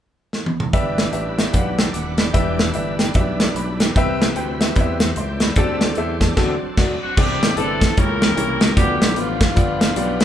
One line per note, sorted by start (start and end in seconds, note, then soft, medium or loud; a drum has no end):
0.33 snare medium
0.46 high tom medium
0.60 mid tom medium
0.73 1.08 G1 medium
0.73 1.35 G2 medium
0.73 2.32 G3 medium
0.73 1.05 D4 loud
0.73 2.32 D4 medium
0.73 2.32 E4 medium
0.73 1.05 G4 loud
0.73 1.05 B4 medium
0.73 1.78 B4 medium
0.73 1.05 E5 loud
0.73 kick loud
0.73 closed hi-hat medium
0.98 snare loud
0.98 closed hi-hat medium
1.13 1.48 A1 medium
1.13 1.31 D4 medium
1.13 1.32 G4 medium
1.13 1.32 B4 medium
1.13 1.32 E5 medium
1.13 closed hi-hat medium
1.38 1.50 D4 medium
1.38 1.50 G4 medium
1.38 1.50 B4 medium
1.38 1.50 E5 medium
1.38 snare medium
1.38 closed hi-hat medium
1.53 1.89 B1 medium
1.53 1.85 D4 medium
1.53 1.85 G4 medium
1.53 1.86 B4 medium
1.53 1.60 F5 medium
1.53 kick medium
1.53 closed hi-hat medium
1.58 1.81 F#5 medium
1.78 1.95 A4 soft
1.78 1.94 D5 medium
1.78 1.94 G5 medium
1.78 1.94 E6 medium
1.78 snare loud
1.78 closed hi-hat medium
1.93 2.29 D#1 medium
1.93 2.20 B4 medium
1.93 2.18 F#5 medium
1.93 2.19 F#5 medium
1.93 2.18 D6 medium
1.93 closed hi-hat medium
2.18 2.58 D5 soft
2.18 2.58 G5 medium
2.18 2.58 B5 medium
2.18 snare loud
2.18 closed hi-hat medium
2.33 2.69 E1 loud
2.33 2.95 E3 medium
2.33 3.93 G3 medium
2.33 2.66 D4 loud
2.33 3.93 D4 medium
2.33 3.93 E4 medium
2.33 2.66 G4 medium
2.33 2.66 B4 medium
2.33 3.93 B4 medium
2.33 2.66 E5 loud
2.33 kick medium
2.33 closed hi-hat medium
2.59 snare loud
2.59 closed hi-hat medium
2.74 3.09 G1 medium
2.74 2.93 D4 medium
2.74 2.93 G4 medium
2.74 2.93 B4 medium
2.74 2.93 E5 medium
2.74 closed hi-hat medium
2.99 3.11 D4 medium
2.99 3.11 G4 medium
2.99 3.11 B4 medium
2.99 3.11 G5 medium
2.99 snare medium
2.99 closed hi-hat medium
3.14 3.49 B1 medium
3.14 3.47 D4 medium
3.14 3.21 F#4 medium
3.14 3.47 B4 medium
3.14 3.47 E5 medium
3.14 kick medium
3.14 closed hi-hat medium
3.20 3.50 G4 medium
3.40 snare loud
3.40 closed hi-hat medium
3.55 3.90 B1 medium
3.55 3.80 D5 medium
3.55 3.79 B5 medium
3.55 closed hi-hat medium
3.80 3.96 B4 medium
3.80 4.19 G5 medium
3.80 snare loud
3.80 closed hi-hat medium
3.95 4.30 C2 loud
3.95 4.57 C3 medium
3.95 5.53 G3 medium
3.95 5.53 C4 medium
3.95 4.28 C4 loud
3.95 5.53 E4 medium
3.95 4.28 G4 medium
3.95 4.99 B4 medium
3.95 4.28 B4 loud
3.95 4.28 E5 loud
3.95 kick medium
3.95 closed hi-hat medium
4.22 snare loud
4.22 closed hi-hat medium
4.35 4.70 D2 medium
4.35 4.54 C4 medium
4.35 4.54 G4 medium
4.35 4.54 B4 medium
4.35 4.54 G5 medium
4.35 closed hi-hat medium
4.61 4.72 C4 medium
4.61 4.72 G4 medium
4.61 4.72 B4 medium
4.61 4.72 E5 medium
4.61 snare medium
4.61 closed hi-hat medium
4.75 5.11 E2 medium
4.75 5.08 C4 medium
4.75 5.08 G4 medium
4.75 5.08 B4 medium
4.75 4.82 D5 medium
4.75 kick medium
4.75 closed hi-hat medium
4.81 5.10 E5 medium
5.00 5.16 C5 soft
5.00 5.15 F#5 medium
5.00 snare loud
5.00 closed hi-hat medium
5.16 5.50 C#2 medium
5.16 5.42 D5 medium
5.16 5.41 E5 medium
5.16 5.41 G5 medium
5.16 5.40 C6 medium
5.16 closed hi-hat medium
5.40 5.81 B4 soft
5.40 5.55 D5 soft
5.40 5.80 E5 medium
5.40 5.80 B5 medium
5.40 snare loud
5.40 closed hi-hat medium
5.56 5.91 D2 medium
5.56 6.18 D3 medium
5.56 6.36 G3 medium
5.56 5.88 C4 loud
5.56 6.36 C4 medium
5.56 6.37 D4 medium
5.56 5.63 F#4 medium
5.56 5.89 A4 medium
5.56 5.97 A4 medium
5.56 5.88 D5 loud
5.56 kick medium
5.56 closed hi-hat medium
5.62 5.91 G4 medium
5.81 snare loud
5.81 closed hi-hat medium
5.95 6.31 E2 medium
5.95 6.15 C4 medium
5.95 6.15 G4 medium
5.95 6.21 G4 soft
5.95 6.15 A4 medium
5.95 6.20 C5 medium
5.95 6.15 E5 medium
5.95 closed hi-hat medium
6.21 6.32 C4 medium
6.21 6.33 G4 medium
6.21 6.33 A4 medium
6.21 6.38 A4 soft
6.21 6.33 D5 medium
6.21 6.61 D5 medium
6.21 kick medium
6.21 snare medium
6.21 closed hi-hat medium
6.37 6.54 D2 medium
6.37 6.54 D3 medium
6.37 7.16 F#3 medium
6.37 6.53 C4 medium
6.37 7.16 C4 medium
6.37 7.16 D4 medium
6.37 6.54 F#4 medium
6.37 6.54 A4 medium
6.37 6.77 A4 medium
6.37 kick medium
6.37 snare medium
6.37 crash medium
6.42 6.56 D5 medium
6.77 6.94 D2 medium
6.77 6.94 F#4 medium
6.77 7.02 A4 soft
6.77 6.94 D5 medium
6.77 7.01 D5 medium
6.77 7.16 B5 medium
6.77 kick loud
6.77 snare medium
6.77 crash medium
7.03 7.16 F#4 medium
7.03 7.41 C5 soft
7.03 7.41 F#5 medium
7.17 7.38 C2 loud
7.17 7.78 C3 medium
7.17 7.97 E3 medium
7.17 7.49 C4 medium
7.17 7.96 C4 medium
7.17 7.57 D4 medium
7.17 7.97 D4 medium
7.17 7.49 E4 medium
7.17 7.56 E4 medium
7.17 7.58 G4 medium
7.17 7.49 A4 medium
7.17 7.97 A4 medium
7.17 7.49 D5 medium
7.17 kick loud
7.17 crash medium
7.42 7.55 A1 medium
7.42 snare loud
7.42 closed hi-hat medium
7.57 7.91 G1 medium
7.57 7.89 C4 medium
7.57 7.95 D4 medium
7.57 7.89 E4 medium
7.57 7.95 E4 medium
7.57 7.97 A4 medium
7.57 7.89 A4 medium
7.57 7.89 B4 medium
7.57 closed hi-hat medium
7.81 kick medium
7.81 snare medium
7.81 closed hi-hat medium
7.97 8.31 C#2 loud
7.97 8.58 C#3 medium
7.97 8.76 E3 medium
7.97 8.29 A#3 medium
7.97 8.76 A#3 medium
7.97 8.76 C#4 medium
7.97 8.29 E4 medium
7.97 8.74 E4 medium
7.97 8.29 G4 medium
7.97 8.76 G4 medium
7.97 8.74 G4 medium
7.97 8.77 A#4 medium
7.97 8.29 C#5 medium
7.97 kick medium
7.97 closed hi-hat medium
8.22 snare loud
8.22 closed hi-hat medium
8.37 8.58 C2 medium
8.37 8.68 A#3 medium
8.37 8.69 E4 medium
8.37 8.69 G4 medium
8.37 8.68 C#5 medium
8.37 closed hi-hat medium
8.61 8.75 C#2 medium
8.61 snare loud
8.61 closed hi-hat medium
8.76 8.98 D2 loud
8.76 9.38 D3 medium
8.76 9.56 F3 medium
8.76 8.83 A3 medium
8.76 9.56 B3 medium
8.76 9.18 B3 medium
8.76 9.55 D4 medium
8.76 9.08 F4 medium
8.76 9.08 G4 medium
8.76 9.14 G4 medium
8.76 9.56 G4 medium
8.76 9.08 D5 medium
8.76 kick loud
8.76 closed hi-hat medium
8.81 9.11 B3 medium
9.01 9.17 B1 medium
9.01 snare loud
9.01 closed hi-hat medium
9.16 9.51 A1 medium
9.16 9.48 B3 medium
9.16 10.19 B3 medium
9.16 9.48 F4 medium
9.16 10.22 F4 medium
9.16 9.48 G4 medium
9.16 9.48 B4 medium
9.16 closed hi-hat medium
9.41 kick medium
9.41 snare loud
9.41 closed hi-hat medium
9.55 9.91 G1 loud
9.55 10.17 G2 medium
9.55 10.25 F3 medium
9.55 9.88 B3 medium
9.55 10.25 B3 medium
9.55 10.25 D4 medium
9.55 9.87 F4 medium
9.55 9.88 G4 medium
9.55 10.25 G4 medium
9.55 9.88 D5 medium
9.55 kick loud
9.55 closed hi-hat medium
9.81 snare loud
9.81 closed hi-hat medium
9.96 10.18 B1 medium
9.96 10.25 B3 medium
9.96 10.25 F4 medium
9.96 10.25 G4 medium
9.96 10.25 D5 medium
9.96 closed hi-hat medium
10.20 10.25 B1 medium
10.20 10.25 E4 medium
10.20 snare loud
10.20 closed hi-hat medium